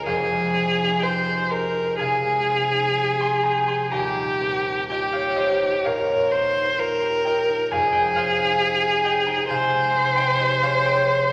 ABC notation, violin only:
X:1
M:4/4
L:1/8
Q:1/4=64
K:Fm
V:1 name="Violin"
A2 c B A4 | G2 G2 B c B2 | A4 c4 |]